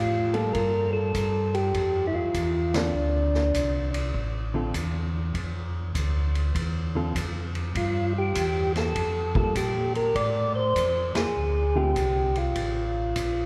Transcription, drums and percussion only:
0.34 ride
0.55 kick, ride
1.15 kick, hi-hat pedal, ride
1.54 ride
1.74 kick, ride
2.34 kick, hi-hat pedal, ride
2.74 snare, ride
3.34 snare
3.54 kick, hi-hat pedal, ride
3.94 ride
4.14 kick
4.74 kick, hi-hat pedal, ride
5.35 kick, ride
5.95 kick, hi-hat pedal, ride
6.35 ride
6.55 kick, ride
7.15 kick, hi-hat pedal, ride
7.55 ride
7.75 kick, ride
8.35 kick, hi-hat pedal, ride
8.76 snare, ride
8.95 kick, ride
9.35 kick
9.55 kick, hi-hat pedal, ride
9.95 ride
10.15 kick, ride
10.76 kick, hi-hat pedal, ride
11.15 snare, ride
11.96 kick, hi-hat pedal, ride
12.35 ride
12.55 kick, ride
13.16 kick, hi-hat pedal, ride

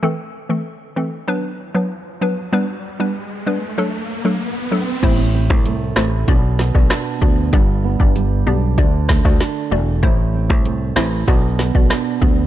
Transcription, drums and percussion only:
5.03 kick, closed hi-hat, crash
5.50 kick
5.66 closed hi-hat
5.96 cross-stick, snare
6.28 kick, closed hi-hat
6.59 snare
6.75 kick
6.90 cross-stick, snare, closed hi-hat
7.22 kick
7.53 kick, closed hi-hat
8.00 kick
8.16 closed hi-hat
8.78 kick, closed hi-hat
9.09 kick, cross-stick, snare
9.25 kick
9.40 snare, closed hi-hat
10.03 kick, closed hi-hat
10.50 kick
10.65 closed hi-hat
10.96 cross-stick, snare
11.28 kick, closed hi-hat
11.59 snare
11.75 kick
11.90 cross-stick, snare, closed hi-hat
12.22 kick

